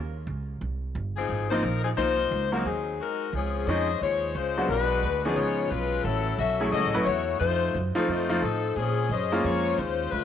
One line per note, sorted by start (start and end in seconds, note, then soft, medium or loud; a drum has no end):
0.00 0.26 D#2 medium
0.27 0.60 C#2 medium
0.61 0.94 C2 medium
0.95 1.28 G1 medium
1.17 1.48 F3 medium
1.17 1.48 C4 medium
1.17 1.49 D#4 medium
1.17 1.48 G#4 medium
1.29 1.62 G#1 medium
1.50 1.63 F3 medium
1.50 1.63 A#3 medium
1.50 1.62 C4 medium
1.50 1.61 D#4 medium
1.50 1.63 D#4 medium
1.50 1.63 F4 medium
1.50 1.62 C5 loud
1.63 1.96 A#1 medium
1.63 1.83 F3 medium
1.63 1.82 C4 medium
1.63 1.82 D#4 medium
1.63 1.84 A#4 loud
1.83 1.90 F3 medium
1.83 1.90 C4 medium
1.83 1.90 D#4 medium
1.83 1.89 G#4 medium
1.97 2.30 C2 medium
1.97 2.16 F3 soft
1.97 2.49 A#3 medium
1.97 2.16 A#3 soft
1.97 2.17 C4 soft
1.97 2.16 D#4 medium
1.97 2.49 D#4 loud
1.97 2.49 F4 loud
1.97 2.49 C5 loud
2.31 2.64 C#2 medium
2.52 2.65 F3 medium
2.52 2.64 F#3 medium
2.52 2.64 A#3 medium
2.52 2.64 C4 medium
2.52 2.64 D#4 medium
2.52 2.64 F#4 medium
2.52 2.65 A#4 medium
2.65 2.98 D#2 medium
2.65 3.17 F#3 medium
2.65 3.17 C4 medium
2.65 3.00 D#4 medium
2.65 3.17 G#4 medium
3.00 3.32 G#3 medium
3.00 3.32 D#4 medium
3.00 3.32 F#4 medium
3.00 3.32 A#4 medium
3.33 3.66 C#2 medium
3.33 3.68 F3 medium
3.33 3.69 C4 medium
3.33 3.67 C#4 medium
3.33 3.68 G#4 medium
3.67 4.00 F2 medium
3.67 3.87 F3 medium
3.67 3.87 G#3 medium
3.67 3.87 C4 medium
3.67 4.02 C#4 medium
3.67 3.87 C#4 medium
3.67 3.88 D#4 medium
3.67 4.02 G#4 medium
3.67 4.01 C5 medium
3.67 4.02 D#5 loud
4.01 4.34 D#2 medium
4.01 4.34 G#3 medium
4.01 4.34 F4 medium
4.01 4.34 C5 medium
4.01 4.33 C#5 loud
4.35 4.68 C#2 medium
4.35 4.69 G#3 medium
4.35 4.70 C#4 medium
4.35 4.70 F4 medium
4.35 4.70 C5 loud
4.57 4.69 F#3 medium
4.57 4.69 G#3 medium
4.57 4.69 B3 medium
4.57 4.69 D4 medium
4.57 4.69 F#4 medium
4.69 5.02 B1 medium
4.69 5.21 G#3 medium
4.69 5.21 D4 medium
4.69 5.21 F#4 loud
4.69 5.21 B4 loud
5.03 5.35 D2 medium
5.25 5.69 F3 medium
5.25 5.36 F#3 medium
5.25 5.35 B3 medium
5.25 5.69 B3 medium
5.25 5.69 C#4 medium
5.25 5.37 D4 medium
5.25 5.69 D#4 medium
5.25 5.36 G#4 medium
5.25 5.69 G#4 medium
5.36 5.70 C#2 medium
5.36 5.68 B3 medium
5.36 5.69 F4 medium
5.36 5.69 G#4 medium
5.36 5.68 C#5 medium
5.70 6.04 B1 medium
5.70 6.05 G#3 medium
5.70 6.03 C#4 medium
5.70 6.05 F4 medium
5.70 6.05 B4 loud
6.04 6.38 A1 medium
6.04 6.39 F#3 medium
6.04 6.38 C#4 medium
6.04 6.39 E4 medium
6.04 6.38 A4 loud
6.38 6.72 B1 medium
6.38 6.71 C#4 medium
6.38 6.71 F#4 medium
6.38 6.71 A4 medium
6.38 6.71 E5 medium
6.60 6.92 F#3 medium
6.60 6.92 A3 medium
6.60 6.92 C#4 medium
6.60 6.92 E4 medium
6.60 6.92 G#4 medium
6.72 6.84 C#2 medium
6.72 7.04 C#4 medium
6.72 7.04 F#4 loud
6.72 7.04 A4 medium
6.72 7.04 D#5 loud
6.84 6.95 A1 medium
6.94 7.06 F#1 medium
6.94 7.06 F#3 medium
6.94 7.06 A3 medium
6.94 7.06 C#4 medium
6.94 7.06 E4 medium
6.94 7.06 B4 medium
7.06 7.40 E2 medium
7.06 7.38 A3 loud
7.06 7.38 E4 medium
7.06 7.38 F#4 medium
7.06 7.38 C#5 medium
7.40 7.73 F2 medium
7.40 7.79 A3 medium
7.40 7.79 D#4 loud
7.40 7.79 F4 loud
7.40 7.79 C5 loud
7.74 7.94 F#2 medium
7.95 8.27 F3 medium
7.95 8.08 F3 medium
7.95 8.28 A3 medium
7.95 8.07 C4 medium
7.95 8.27 C4 medium
7.95 8.07 D#4 medium
7.95 8.27 D#4 medium
7.95 8.27 F4 medium
7.95 8.08 A4 medium
7.95 muted upright bass stroke soft
8.08 8.41 F2 medium
8.08 8.43 A3 medium
8.08 8.42 D#4 medium
8.08 8.43 F4 medium
8.08 8.43 C5 medium
8.29 8.41 F3 medium
8.29 8.41 A3 medium
8.29 8.41 C4 medium
8.29 8.41 D#4 medium
8.29 8.41 F4 medium
8.42 8.75 A2 medium
8.42 8.74 F3 medium
8.42 8.74 C4 medium
8.42 8.74 D#4 medium
8.42 8.74 A4 medium
8.76 9.09 A#2 medium
8.76 9.10 F3 medium
8.76 9.10 C4 medium
8.76 9.10 C#4 medium
8.76 9.10 G#4 loud
9.09 9.43 F#2 medium
9.09 9.42 C#4 medium
9.09 9.43 G#4 medium
9.09 9.42 C5 medium
9.09 9.43 D#5 medium
9.32 9.76 G#3 medium
9.32 9.76 A#3 medium
9.32 9.76 C#4 medium
9.32 9.76 F4 medium
9.44 9.77 F2 medium
9.44 9.78 G#3 medium
9.44 9.78 F4 medium
9.44 9.78 C5 medium
9.44 9.79 C#5 loud
9.78 10.11 D#2 medium
9.78 10.12 G#3 medium
9.78 10.13 C#4 medium
9.78 10.11 F4 medium
9.78 10.13 C5 loud
10.11 10.24 D2 medium
10.11 10.24 A3 medium
10.11 10.24 D4 medium
10.11 10.24 F4 medium
10.11 10.24 B4 loud